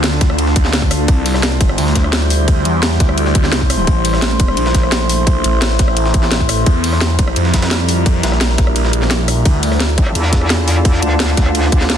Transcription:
Already playing: D2 D4 F4 A4
0.04 snare, closed hi-hat, ride
0.12 snare
0.21 kick, snare, closed hi-hat, ride
0.30 cross-stick
0.38 closed hi-hat, ride
0.47 snare
0.56 kick, closed hi-hat, ride
0.65 snare
0.73 snare, closed hi-hat, ride
0.82 kick
0.91 cross-stick, open hi-hat, ride
1.08 C2 G3 E4 C5, kick, closed hi-hat, ride
1.26 closed hi-hat, open hi-hat
1.34 cross-stick, snare
1.43 snare, closed hi-hat, ride
1.52 ride
1.61 G1, kick, closed hi-hat, ride
1.69 cross-stick
1.78 D2, closed hi-hat, open hi-hat
1.87 snare
1.95 kick, snare, closed hi-hat, ride
2.04 cross-stick
2.13 snare, closed hi-hat, ride
2.30 open hi-hat, ride
2.48 kick, closed hi-hat, ride
2.65 E2, closed hi-hat, ride
2.83 snare, closed hi-hat, ride
2.91 snare
3.00 D2, kick, snare, closed hi-hat, ride
3.09 cross-stick
3.18 closed hi-hat, ride
3.26 snare
3.35 kick, closed hi-hat, ride
3.44 snare
3.52 C2, snare, closed hi-hat, ride
3.61 kick
3.70 cross-stick, open hi-hat, ride
3.87 A1 A3, kick, closed hi-hat, ride
4.05 closed hi-hat, open hi-hat
4.13 cross-stick, snare
4.22 snare, closed hi-hat, ride
4.31 ride
4.40 E1, kick, closed hi-hat, ride
4.48 cross-stick
4.57 A#1, closed hi-hat, ride
4.66 snare
4.75 kick, snare, closed hi-hat, ride
4.83 cross-stick
4.92 snare, closed hi-hat, ride
5.09 open hi-hat, ride
5.27 kick, closed hi-hat, ride
5.44 A1, closed hi-hat, ride
5.62 snare, closed hi-hat, ride
5.70 snare
5.79 kick, snare, closed hi-hat, ride
5.88 cross-stick
5.97 closed hi-hat, ride
6.05 snare
6.14 kick, closed hi-hat, ride
6.23 snare
6.32 snare, closed hi-hat, ride
6.40 kick
6.49 cross-stick, open hi-hat, ride
6.66 E2 G3 A#4, kick, closed hi-hat, ride
6.84 closed hi-hat, open hi-hat
6.93 cross-stick, snare
7.01 snare, closed hi-hat, ride
7.10 ride
7.19 A#1, kick, closed hi-hat, ride
7.28 cross-stick
7.36 F2, closed hi-hat, ride
7.45 snare
7.54 kick, snare, closed hi-hat, ride
7.62 cross-stick, snare, ride
7.71 snare, closed hi-hat, ride
7.89 open hi-hat, ride
8.06 kick, closed hi-hat, ride
8.23 A#1, snare, closed hi-hat, ride
8.32 cross-stick, snare
8.41 snare, closed hi-hat, ride
8.50 snare
8.58 kick, snare, closed hi-hat, ride
8.67 cross-stick
8.76 closed hi-hat, ride
8.84 snare
8.93 closed hi-hat, ride
9.02 snare
9.11 snare, closed hi-hat, ride
9.28 cross-stick, open hi-hat, ride
9.45 D2 D4 F4 A4, kick, closed hi-hat, ride
9.63 closed hi-hat, open hi-hat
9.72 cross-stick, snare
9.80 snare, closed hi-hat, ride
9.89 ride
9.98 A1, kick, closed hi-hat, ride
10.07 cross-stick
10.15 E2, closed hi-hat, ride
10.24 snare
10.33 kick, snare, closed hi-hat, ride
10.41 cross-stick
10.50 snare, closed hi-hat, ride
10.68 open hi-hat, ride
10.85 kick, closed hi-hat, ride
11.02 D2, closed hi-hat, ride
11.20 snare, closed hi-hat, ride
11.29 snare
11.37 kick, snare, closed hi-hat, ride
11.46 cross-stick
11.55 closed hi-hat, ride
11.64 snare
11.72 kick, closed hi-hat, ride
11.81 snare
11.90 snare, closed hi-hat, ride

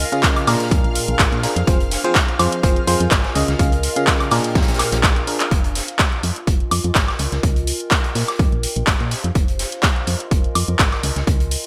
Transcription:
Already playing: F4 A#4 D#5 F5 G#5 F6
0.12 C#3 C#4 F4 G#4 F5, closed hi-hat
0.23 kick, snare, clap, closed hi-hat
0.36 closed hi-hat, high woodblock
0.47 A#2 D4 F4 G#4 A#4, snare, open hi-hat, high woodblock
0.56 G5
0.60 snare, closed hi-hat
0.71 F2, kick, closed hi-hat
0.84 A#1, closed hi-hat
0.95 closed hi-hat, open hi-hat
1.02 C5 F5
1.08 A#1, closed hi-hat
1.19 G#1, kick, snare, clap, closed hi-hat
1.32 A#2, closed hi-hat
1.43 D4 F4 G#4 A#4, snare, closed hi-hat, open hi-hat
1.56 F2, closed hi-hat
1.67 F1 F3 C4 F4 G#4 C5, kick, closed hi-hat
1.80 D#5, closed hi-hat
1.91 snare, closed hi-hat, open hi-hat
2.02 F3 C4 F4 G#4 C5 G#5, closed hi-hat
2.15 A#4, kick, snare, clap, closed hi-hat
2.28 closed hi-hat
2.39 F2 F3 C4 F4 G#4 C5, closed hi-hat, open hi-hat, high woodblock
2.52 closed hi-hat
2.63 F1 F3 C4 F4 G#4 C5, kick, closed hi-hat
2.76 closed hi-hat
2.87 F2 F3 C4 F4 G#4 C5, closed hi-hat, open hi-hat
3.00 F2, closed hi-hat
3.11 G#1, kick, snare, clap, closed hi-hat
3.24 snare, closed hi-hat
3.35 C#2 C#3 C#4 F4 G#4 D#5, closed hi-hat, open hi-hat
3.48 C#2, snare, closed hi-hat
3.59 C#2 C#3 C#4 F4 G#4 F5, kick, closed hi-hat
3.72 closed hi-hat
3.79 G5
3.83 closed hi-hat, open hi-hat
3.96 C#3 C#4 F4 G#4 F5, closed hi-hat
4.07 kick, snare, clap, closed hi-hat
4.20 closed hi-hat, high woodblock
4.31 A#2 D4 F4 G#4 A#4, snare, open hi-hat, high woodblock
4.44 closed hi-hat
4.55 F2, kick, snare, closed hi-hat
4.62 snare, closed hi-hat
4.68 A#1, snare, closed hi-hat
4.74 snare, closed hi-hat
4.79 snare, clap, closed hi-hat, open hi-hat, high woodblock
4.86 C5 F5
4.92 A#1, snare, closed hi-hat
5.03 kick, snare, clap, closed hi-hat
5.16 closed hi-hat
5.27 D4 F4 G#4 A#4, open hi-hat
5.40 clap, closed hi-hat
5.51 F1 F4, kick, closed hi-hat
5.64 closed hi-hat
5.75 snare, closed hi-hat, open hi-hat
5.88 closed hi-hat
5.98 A#4, kick, snare, clap, closed hi-hat
6.06 D#5 G#5
6.12 closed hi-hat
6.23 F2, closed hi-hat, open hi-hat
6.36 closed hi-hat
6.47 F1, kick, closed hi-hat
6.60 closed hi-hat
6.71 F2, closed hi-hat, open hi-hat, high woodblock
6.84 F2, closed hi-hat
6.95 G#1, kick, snare, clap, closed hi-hat
7.08 snare, closed hi-hat, high woodblock
7.19 C#2, closed hi-hat, open hi-hat
7.32 C#2, snare, closed hi-hat
7.43 C#2, kick, closed hi-hat
7.56 closed hi-hat
7.63 G5
7.67 closed hi-hat, open hi-hat
7.80 closed hi-hat
7.91 kick, snare, clap, closed hi-hat
8.04 closed hi-hat
8.15 A#2 D4, snare, open hi-hat
8.28 snare, closed hi-hat, high woodblock
8.34 G4
8.39 F2, kick, closed hi-hat
8.52 A#1, closed hi-hat
8.63 closed hi-hat, open hi-hat
8.70 C5 F5
8.76 A#1, closed hi-hat
8.87 G#1, kick, snare, clap, closed hi-hat
9.00 A#2, closed hi-hat
9.11 snare, closed hi-hat, open hi-hat
9.24 F2, closed hi-hat
9.35 F1 F4, kick, closed hi-hat
9.48 closed hi-hat
9.59 snare, closed hi-hat, open hi-hat
9.66 A#4
9.72 closed hi-hat
9.77 D#5
9.83 kick, snare, clap, closed hi-hat
9.96 closed hi-hat
10.07 F2 G#5, closed hi-hat, open hi-hat
10.20 closed hi-hat
10.31 F1, kick, closed hi-hat
10.44 closed hi-hat
10.55 F2, closed hi-hat, open hi-hat, high woodblock
10.68 F2, closed hi-hat
10.79 G#1, kick, snare, clap, closed hi-hat
10.92 snare, closed hi-hat, high woodblock
11.03 C#2, closed hi-hat, open hi-hat
11.16 C#2, snare, closed hi-hat
11.26 C#2 G5, kick, closed hi-hat
11.40 closed hi-hat
11.51 closed hi-hat, open hi-hat

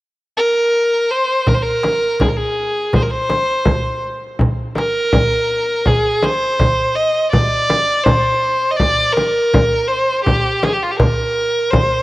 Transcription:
0.37 A#4
1.11 C5
1.47 A#4, darbuka dum, frame drum
1.54 C5
1.62 A#4
1.83 darbuka tek, frame drum
2.20 G#4, darbuka dum, frame drum
2.28 A#4
2.36 G#4
2.93 C5, darbuka dum, frame drum
3.02 A#4
3.10 C5
3.30 darbuka tek, frame drum
3.65 frame drum, darbuka dum
3.86 darbuka ka
4.39 frame drum, darbuka dum
4.75 A#4, darbuka tek, frame drum
5.13 frame drum, darbuka dum
5.85 G#4, frame drum, darbuka dum
6.22 C5, darbuka tek, frame drum
6.60 frame drum, darbuka dum
6.79 darbuka ka
6.96 D#5
7.31 D5, frame drum, darbuka dum
7.70 darbuka tek, frame drum
8.04 C5, frame drum, darbuka dum
8.71 D#5
8.76 D5, frame drum
8.81 darbuka dum
9.13 A#4
9.17 darbuka tek, frame drum
9.54 darbuka dum, frame drum
9.72 darbuka ka
9.88 C5
10.24 G4, darbuka dum, frame drum
10.63 G#4, darbuka tek, frame drum
10.73 G4
10.82 F4, darbuka ka
10.91 G4
10.99 A#4, frame drum, darbuka dum
11.38 darbuka ka
11.71 C5, frame drum, darbuka dum
11.92 darbuka ka

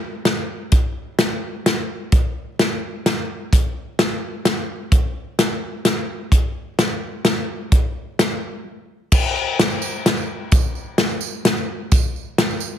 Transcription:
0.25 snare, closed hi-hat
0.72 kick, closed hi-hat
1.19 snare, closed hi-hat
1.66 snare, closed hi-hat
2.12 kick, closed hi-hat
2.59 snare, closed hi-hat
3.06 snare, closed hi-hat
3.53 kick, closed hi-hat
3.99 snare, closed hi-hat
4.45 snare, closed hi-hat
4.92 kick, closed hi-hat
5.39 snare, closed hi-hat
5.85 snare, closed hi-hat
6.32 kick, closed hi-hat
6.79 snare, closed hi-hat
7.25 snare, closed hi-hat
7.72 kick, closed hi-hat
8.19 snare, closed hi-hat
9.12 kick, crash, tambourine
9.36 tambourine
9.59 snare, closed hi-hat
9.70 tambourine
9.82 tambourine
10.06 snare, closed hi-hat
10.17 tambourine
10.52 kick, closed hi-hat, tambourine
10.75 tambourine
10.98 snare, closed hi-hat
11.09 tambourine
11.21 tambourine
11.45 snare, closed hi-hat
11.57 tambourine
11.92 kick, closed hi-hat, tambourine
12.16 tambourine
12.38 snare, closed hi-hat
12.50 tambourine
12.60 tambourine

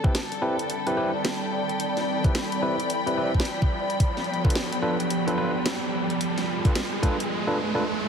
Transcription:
Already playing: G3 C4 A4 D5, riser
0.04 C4 E4 G4 B4 G5, kick
0.15 snare, closed hi-hat
0.32 cross-stick, closed hi-hat
0.42 C4 E4 G4 B4
0.46 B5
0.59 closed hi-hat
0.70 closed hi-hat
0.87 C4 E4 G4 B4, closed hi-hat
0.97 C4 E4 G4 B4, cross-stick
1.25 snare, closed hi-hat
1.69 closed hi-hat
1.80 closed hi-hat
1.97 snare, closed hi-hat
2.24 C4 E4 G4 B4, kick, closed hi-hat
2.35 snare, closed hi-hat
2.52 cross-stick, closed hi-hat
2.62 C4 E4 G4 B4
2.80 closed hi-hat
2.90 closed hi-hat
3.07 C4 E4 G4 B4, closed hi-hat
3.17 C4 E4 G4 B4
3.34 kick
3.40 snare
3.45 closed hi-hat
3.62 kick
3.90 closed hi-hat
4.00 F3 B3 G4, kick, closed hi-hat
4.17 snare, closed hi-hat
4.24 closed hi-hat
4.34 closed hi-hat
4.44 D4 F4 A4 B4, kick
4.50 closed hi-hat
4.55 snare
4.72 cross-stick, closed hi-hat
4.82 D4 F4 A4 B4
5.00 closed hi-hat
5.10 closed hi-hat
5.27 D4 F4 A4 B4, closed hi-hat
5.38 D4 F4 A4 B4, cross-stick
5.66 snare, closed hi-hat
6.10 closed hi-hat
6.21 F4, closed hi-hat
6.38 snare, closed hi-hat
6.65 D4 F4 A4 B4, kick, closed hi-hat
6.75 snare, closed hi-hat
6.93 cross-stick
7.03 D4 F4 A4 B4, kick, closed hi-hat
7.20 closed hi-hat
7.47 D4 F4 A4 B4
7.75 D4 F4 A4 B4

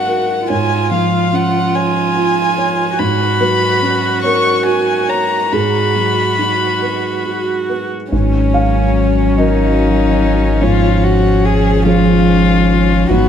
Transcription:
Already playing: G#2 F#3 C#4 F#4 A#4 D#5 F5 F#5
0.07 A#4
0.50 G#2 F4 C#5 G#5
0.91 F3 F5
1.33 C#4 F#5
1.75 C#5 G#5
2.17 F4
2.58 C#5
2.99 G#2 F#4 B5
3.40 F#3 B4
3.82 C#4
4.22 A#4 C#5 C#6
4.65 F#4 G#5
5.09 C#5 A#5
5.52 G#2 F#4 G#4 B5
5.96 F#3
6.39 D#4
6.82 B4
7.25 F#4
7.69 B4
8.12 G#1 G#2 F#3 C#4
8.54 F5
9.37 F#3 C#4 D#4 A#4 D#5
10.62 G#2 F3 F4 C#5
11.03 F#4
11.45 G#4
11.86 F3 C#4 F4 G#4
13.09 G#1 G#2 F#3 B3 F#4

